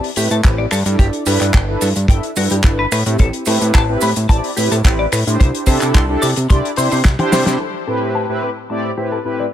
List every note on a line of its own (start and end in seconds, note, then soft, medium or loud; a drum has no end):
0.00 0.10 E4 medium
0.00 0.10 G4 medium
0.00 0.10 D5 medium
0.00 open hi-hat medium
0.16 0.28 A2 loud
0.16 0.37 C4 medium
0.16 0.37 E4 medium
0.16 0.37 G4 medium
0.16 0.24 G4 medium
0.16 0.38 B4 medium
0.16 open hi-hat loud
0.16 maracas medium
0.30 0.42 A2 medium
0.30 0.35 A4 medium
0.30 closed hi-hat medium
0.30 maracas medium
0.43 0.67 A1 medium
0.43 0.65 C4 medium
0.43 0.65 E4 medium
0.43 0.65 G4 medium
0.43 0.65 B4 medium
0.43 kick loud
0.43 clap loud
0.43 closed hi-hat medium
0.43 maracas soft
0.58 0.65 D5 medium
0.71 0.83 G2 medium
0.71 0.79 A4 medium
0.71 finger snap medium
0.71 open hi-hat loud
0.71 maracas medium
0.85 0.96 G2 medium
0.85 1.23 D4 medium
0.85 1.23 E4 medium
0.85 1.23 A4 medium
0.85 1.24 D5 medium
0.85 closed hi-hat medium
0.85 maracas soft
0.99 1.11 G1 loud
0.99 1.06 G4 medium
0.99 kick loud
0.99 closed hi-hat medium
0.99 maracas soft
1.13 closed hi-hat soft
1.26 1.38 G2 loud
1.26 1.65 D4 medium
1.26 1.65 E4 medium
1.26 1.38 G4 medium
1.26 1.65 A4 medium
1.26 1.65 B4 loud
1.26 open hi-hat loud
1.26 maracas medium
1.41 1.52 G2 medium
1.41 clap soft
1.41 closed hi-hat medium
1.41 maracas soft
1.54 1.77 G1 medium
1.54 1.62 G5 medium
1.54 kick loud
1.54 clap loud
1.54 closed hi-hat medium
1.54 maracas soft
1.68 1.88 D4 medium
1.68 1.89 E4 medium
1.68 1.89 A4 medium
1.68 1.89 B4 loud
1.81 1.93 G2 medium
1.81 1.89 A4 medium
1.81 open hi-hat medium
1.81 maracas loud
1.95 2.07 G2 medium
1.95 closed hi-hat medium
1.95 maracas soft
2.08 2.20 G1 loud
2.08 2.30 D4 medium
2.08 2.30 E4 medium
2.08 2.30 A4 medium
2.08 2.30 E5 medium
2.08 2.17 G5 medium
2.08 kick loud
2.08 closed hi-hat medium
2.08 maracas soft
2.23 closed hi-hat medium
2.36 2.48 G2 loud
2.36 2.57 D4 medium
2.36 2.57 E4 medium
2.36 2.44 F#4 medium
2.36 2.58 A4 medium
2.36 2.58 B4 medium
2.36 open hi-hat loud
2.36 maracas medium
2.50 2.62 G2 loud
2.50 2.55 G4 medium
2.50 closed hi-hat medium
2.50 maracas medium
2.63 2.86 G1 medium
2.63 2.85 D4 medium
2.63 2.85 E4 medium
2.63 2.85 A4 medium
2.63 2.85 B4 medium
2.63 kick loud
2.63 clap loud
2.63 closed hi-hat medium
2.63 maracas soft
2.79 2.85 B4 medium
2.92 3.03 A2 medium
2.92 2.99 B4 medium
2.92 finger snap medium
2.92 open hi-hat loud
2.92 maracas medium
3.05 3.17 A2 loud
3.05 3.43 C4 medium
3.05 3.44 E4 medium
3.05 3.44 G4 medium
3.05 closed hi-hat medium
3.05 maracas soft
3.18 3.31 A1 loud
3.18 3.27 A4 medium
3.18 kick loud
3.18 closed hi-hat medium
3.18 maracas soft
3.33 closed hi-hat medium
3.46 3.58 A2 loud
3.46 3.85 C4 medium
3.46 3.85 E4 medium
3.46 3.85 G4 medium
3.46 3.58 A4 medium
3.46 3.85 B4 loud
3.46 open hi-hat loud
3.46 maracas medium
3.61 3.72 A2 medium
3.61 closed hi-hat medium
3.61 maracas soft
3.74 3.97 A1 medium
3.74 3.82 A5 medium
3.74 kick loud
3.74 clap loud
3.74 closed hi-hat medium
3.74 maracas soft
3.88 4.09 C4 medium
3.88 4.09 E4 medium
3.88 4.09 G4 medium
3.88 4.09 B4 loud
4.01 4.14 A2 medium
4.01 4.09 B4 medium
4.01 open hi-hat medium
4.01 maracas medium
4.16 4.27 A2 medium
4.16 closed hi-hat medium
4.16 maracas medium
4.29 4.41 A1 loud
4.29 4.50 C4 medium
4.29 4.50 E4 medium
4.29 4.51 G4 medium
4.29 4.51 D5 loud
4.29 4.37 A5 medium
4.29 kick loud
4.29 closed hi-hat medium
4.29 maracas soft
4.44 open hi-hat medium
4.57 4.69 A2 loud
4.57 4.78 C4 medium
4.57 4.78 E4 medium
4.57 4.64 G4 medium
4.57 4.78 G4 medium
4.57 4.78 B4 medium
4.57 open hi-hat loud
4.57 maracas medium
4.72 4.82 A2 loud
4.72 4.75 A4 medium
4.72 closed hi-hat medium
4.72 maracas medium
4.84 5.07 A1 medium
4.84 5.05 C4 medium
4.84 5.05 E4 medium
4.84 5.06 G4 medium
4.84 5.06 B4 medium
4.84 kick loud
4.84 clap loud
4.84 closed hi-hat medium
4.84 maracas soft
4.99 5.06 D5 medium
5.12 5.24 A2 medium
5.12 5.19 B4 medium
5.12 finger snap medium
5.12 open hi-hat loud
5.12 maracas medium
5.26 5.37 A2 loud
5.26 5.64 D4 medium
5.26 5.64 E4 medium
5.26 5.64 G4 medium
5.26 5.64 C5 medium
5.26 closed hi-hat medium
5.26 maracas soft
5.40 5.52 C2 loud
5.40 5.47 C5 medium
5.40 kick loud
5.40 closed hi-hat medium
5.40 maracas soft
5.55 closed hi-hat medium
5.66 5.78 C3 loud
5.66 6.05 D4 medium
5.66 6.05 E4 medium
5.66 6.06 G4 medium
5.66 6.06 A4 loud
5.66 5.78 C5 medium
5.66 kick medium
5.66 open hi-hat loud
5.66 maracas medium
5.81 5.92 C3 medium
5.81 clap soft
5.81 closed hi-hat medium
5.81 maracas soft
5.94 6.17 C2 medium
5.94 6.02 C6 medium
5.94 kick loud
5.94 clap loud
5.94 closed hi-hat medium
5.94 maracas soft
6.09 6.29 D4 medium
6.09 6.30 E4 medium
6.09 6.30 G4 medium
6.09 6.30 A4 loud
6.22 6.34 C3 medium
6.22 6.29 D5 medium
6.22 open hi-hat loud
6.22 maracas medium
6.36 6.47 C3 medium
6.36 closed hi-hat medium
6.36 maracas soft
6.49 6.62 C2 loud
6.49 6.70 D4 medium
6.49 6.71 E4 medium
6.49 6.71 G4 medium
6.49 6.71 D5 loud
6.49 6.57 C6 medium
6.49 kick loud
6.49 closed hi-hat medium
6.49 maracas soft
6.65 closed hi-hat medium
6.76 6.89 C3 loud
6.76 6.98 D4 medium
6.76 6.98 E4 medium
6.76 6.98 G4 medium
6.76 6.85 C5 medium
6.76 6.99 C5 medium
6.76 open hi-hat medium
6.76 maracas medium
6.91 7.02 C3 loud
6.91 7.02 C5 medium
6.91 open hi-hat medium
6.91 maracas soft
7.04 7.16 C2 medium
7.04 kick loud
7.04 snare medium
7.04 clap loud
7.04 closed hi-hat medium
7.04 maracas soft
7.19 7.58 D4 loud
7.19 7.58 E4 medium
7.19 7.58 G4 medium
7.19 7.58 C5 loud
7.19 7.26 G5 medium
7.19 closed hi-hat soft
7.19 high tom medium
7.32 7.44 C3 loud
7.32 7.44 C5 loud
7.32 snare medium
7.32 open hi-hat loud
7.32 maracas medium
7.46 7.57 C3 medium
7.46 snare medium
7.46 closed hi-hat medium
7.46 maracas medium
7.60 7.67 A4 medium
7.87 8.26 A2 medium
7.87 8.26 C4 medium
7.87 8.26 E4 medium
7.87 8.26 G4 medium
7.87 7.98 A4 medium
7.87 8.26 B4 loud
8.15 8.22 A5 medium
8.29 8.49 A2 medium
8.29 8.49 C4 medium
8.29 8.49 E4 medium
8.29 8.50 G4 medium
8.29 8.50 B4 medium
8.42 8.49 B4 medium
8.69 8.91 A2 medium
8.69 8.91 C4 medium
8.69 8.91 E4 medium
8.69 8.91 G4 medium
8.69 8.91 D5 medium
8.69 8.77 A5 medium
8.97 9.18 A2 medium
8.97 9.18 C4 medium
8.97 9.18 E4 medium
8.97 9.05 G4 medium
8.97 9.19 G4 medium
8.97 9.19 B4 medium
9.12 9.16 A4 medium
9.24 9.46 A2 medium
9.24 9.46 C4 medium
9.24 9.46 E4 medium
9.24 9.46 G4 medium
9.24 9.46 B4 medium
9.40 9.46 D5 medium